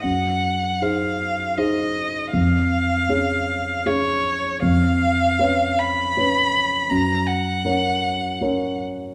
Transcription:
<<
  \new Staff \with { instrumentName = "Violin" } { \time 3/4 \key des \major \tempo 4 = 79 ges''4 f''4 ees''4 | f''2 des''4 | f''4. ces'''4. | bes''8 ges''2 r8 | }
  \new Staff \with { instrumentName = "Grand piano" } { \time 3/4 \key des \major ges,4 <ees' aes' c''>4 <ees' aes' c''>4 | f,4 <des' aes' des''>4 <des' aes' des''>4 | f,4 <des' ces'' des''>4 <des' ces'' des''>4 | ges,4 <des' bes' des''>4 <des' bes' des''>4 | }
>>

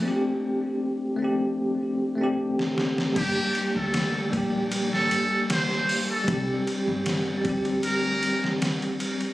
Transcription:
<<
  \new Staff \with { instrumentName = "Muted trumpet" } { \time 4/4 \key g \minor \tempo 4 = 77 r1 | g'8. a'8. r8. a'8. c''8. a'16~ | a'8 r4. bes'4 r4 | }
  \new Staff \with { instrumentName = "Tine electric piano" } { \time 4/4 \key g \minor <a c' d' g'>4. <a c' d' g'>4~ <a c' d' g'>16 <a c' d' g'>4~ <a c' d' g'>16 | <g bes d' g'>4. <g bes d' g'>2~ <g bes d' g'>8 | <g c' d' g'>4. <g c' d' g'>2~ <g c' d' g'>8 | }
  \new Staff \with { instrumentName = "Upright bass" } { \clef bass \time 4/4 \key g \minor r1 | g,,16 r8 d,8. bes,,4 g,,16 r4 r16 | c,16 r8 g,,8. d,4 r4. | }
  \new DrumStaff \with { instrumentName = "Drums" } \drummode { \time 4/4 r4 r4 r4 r16 sn16 sn16 sn16 | <cymc bd cymr>8 cymr8 <cymr sn>8 <bd cymr>8 cymr16 sn16 cymr8 <cymr sn>16 sn16 hho8 | <bd cymr>8 cymr8 <cymr sn>8 <bd cymr>16 cymr16 cymr8 cymr16 sn16 <cymr sn>16 cymr16 cymr16 cymr16 | }
>>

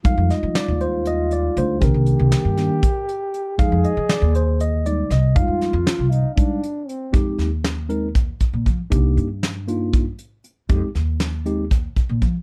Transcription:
<<
  \new Staff \with { instrumentName = "Trombone" } { \time 7/8 \key f \dorian \tempo 4 = 118 f'2.~ f'8 | g'2.~ g'8 | aes'2. r8 | f'4. ees'8 d'4 c'8 |
r2. r8 | r2. r8 | r2. r8 | }
  \new Staff \with { instrumentName = "Tine electric piano" } { \time 7/8 \key f \dorian f''8 ees''8 d''8 c''8 ees''8 d''8 c''8 | bes'2~ bes'8 r4 | f''8 ees''8 d''8 c''8 ees''8 d''8 ees''8 | f''2~ f''8 r4 |
<aes c' ees' g'>8 r4 <aes c' ees' bes'>8 r4. | <bes d' ees' g'>8 r4 <bes d' ees' f'>8 r4. | <aes c' ees' g'>8 r4 <aes c' ees' g'>8 r4. | }
  \new Staff \with { instrumentName = "Tine electric piano" } { \clef bass \time 7/8 \key f \dorian <g aes ees'>2.~ <g aes ees'>8 | <ees bes d'>4. <ees bes d'>8 r4. | <f aes ees'>8 r2 <g aes ees'>8 r8 | <g aes ees'>8 r4. <g aes ees'>8 r4 |
r2. r8 | r2. r8 | r2. r8 | }
  \new Staff \with { instrumentName = "Upright bass" } { \clef bass \time 7/8 \key f \dorian f,16 f,16 r16 f16 r16 ees,4.~ ees,16 d,8 | c,16 c,8 c,16 r16 g,8 r4. r16 | f,16 f,16 r16 f16 r16 ees,4.~ ees,16 c,8 | f,16 f,8 f,16 r16 c,8 r4. r16 |
f,16 r16 ees,2 r16 bes,16 f16 r16 | c,8 g,2 r4 | f,16 r16 ees,2 r16 bes,16 f16 r16 | }
  \new DrumStaff \with { instrumentName = "Drums" } \drummode { \time 7/8 <hh bd>8 <hh sn>8 <hh sn>8 hh8 hh8 hh8 hh8 | <hh bd>8 hh8 <hh sn>8 <hh sn>8 <hh bd>8 hh8 hh8 | <hh bd>8 hh8 <hh sn>8 hh8 hh8 hh8 <hh sn>8 | <hh bd>8 <hh sn>8 <hh sn>8 hh8 <hh bd>8 hh8 hh8 |
<hh bd>8 <hh sn>8 <hh sn>8 hh8 <hh bd>8 <hh bd>8 <hh bd>8 | <hh bd>8 hh8 <hh sn>8 hh8 <hh bd>8 hh8 hh8 | <hh bd>8 <hh sn>8 <hh sn>8 hh8 <hh bd sn>8 <hh bd>8 <hh bd>8 | }
>>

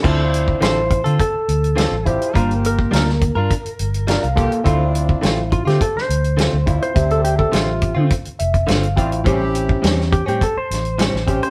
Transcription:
<<
  \new Staff \with { instrumentName = "Electric slide guitar" } { \time 4/4 \key d \minor \tempo 4 = 104 r4 c''4 a'4. g'8 | c''8 bes'2. r8 | r4. f'16 g'16 a'16 c''4. c''16~ | c''16 a'16 g'16 a'16 f'4 r2 |
r4. g'16 g'16 a'16 bis'4. bis'16 | }
  \new Staff \with { instrumentName = "Tine electric piano" } { \time 4/4 \key d \minor << { r1 | r2. d''16 f''8. | r1 | r2 r8 e''8 f''8 g''8 |
r1 | } \\ { <e' f' c''>4. r2 <e' f' c''>8 | <bes f' bes'>4. r2 <bes f' a'>8 | <c' e' f'>4. r2 <c' e' f'>8 | <c' g' e''>4. r2 <c' e' f'>8 |
<bis cis' g'>4. r2 <bis cis' g'>8 | } >> }
  \new Staff \with { instrumentName = "Horn section" } { \time 4/4 \key d \minor <c' d'>4 r2 r8 <c' d' g'>16 r16 | <bes f' g'>4 r2 r8 <bes f' g'>16 r16 | <c' d'>4 r2 r8 <c' d' e'>16 r16 | <c' d'>4 r2 r8 <c' d' f'>16 r16 |
<e' g'>4 r2 r8 <bis cis' g'>16 r16 | }
  \new Staff \with { instrumentName = "Clean electric guitar" } { \time 4/4 \key d \minor <d c' f' a'>16 r8. <d c' f' a'>16 r8 <c' f' a'>16 r4 <d c' f' a'>16 r8. | <g d' f' bes'>16 r8. <g d' f' bes'>16 r8 <d' f' bes'>16 r4 <g d' f' bes'>16 r8. | <d a c' f'>16 r8. <d a c' f'>16 r8 <a c' f'>16 r4 <d a c' f'>16 r8. | r4 <d a c' f'>16 r8 <a c' f'>16 r4 <d a c' f'>16 r8. |
<a, g bis cis'>16 r8. <a, g bis cis'>16 r8 <g bis cis'>16 r4 <a, g bis cis'>16 r8. | }
  \new Staff \with { instrumentName = "Fingered electric bass" } { \clef bass \time 4/4 \key d \minor d,4 a,,8. d16 r8 d,8. a,,8 r16 | g,,4 d,8. g,16 r8 g,,8. c,8 r16 | d,4 a,,8. d16 r8 d,8. d,8 r16 | d,4 a,,8. d16 r8 f,,8 g,,8 a,,8 |
a,,4 e,8. a,16 r8 a,,8. a,,8 r16 | }
  \new DrumStaff \with { instrumentName = "Drums" } \drummode { \time 4/4 <cymc bd>8 hh16 bd16 <hh sn>8 <hh bd>16 hh16 <hh bd>8 hh16 hh16 <hh sn>8 <hh bd>16 hh16 | <hh bd>16 hh16 hh16 bd16 <hh sn>16 sn16 <hh bd>8 <hh bd>16 hh16 hh16 hh16 <hh sn>16 hh16 <hh bd>16 hh16 | <hh bd>8 hh16 bd16 <hh sn>8 <hh bd>16 <hh sn>16 <hh bd>16 sn16 hh16 hh16 <hh sn>8 <hh bd>16 hh16 | <hh bd>16 hh16 hh16 bd16 <hh sn>8 <hh bd>8 <hh bd>16 hh16 hh16 <hh bd>16 <hh sn>16 hh16 <hh bd>16 hh16 |
<hh bd>8 hh16 bd16 <hh sn>16 sn16 <hh bd>16 hh16 <hh bd>8 <hh sn>16 hh16 <hh sn>16 sn16 <hh bd>16 hh16 | }
>>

